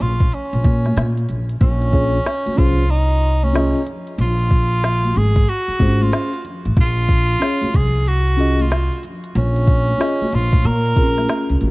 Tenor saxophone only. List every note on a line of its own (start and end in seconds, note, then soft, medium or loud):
0.02 0.36 F4 medium
0.34 1.30 C#4 medium
1.62 2.59 C#4 loud
2.58 2.92 F4 loud
2.90 3.45 D#4 loud
3.44 3.87 C#4 medium
4.21 5.19 F4 loud
5.17 5.50 G#4 loud
5.49 6.04 F#4 loud
6.02 6.46 F4 medium
6.81 7.77 F4 loud
7.76 8.09 G#4 loud
8.08 8.63 F#4 loud
8.62 9.04 F4 medium
9.38 10.36 C#4 loud
10.35 10.68 F4 medium
10.66 11.62 A#4 loud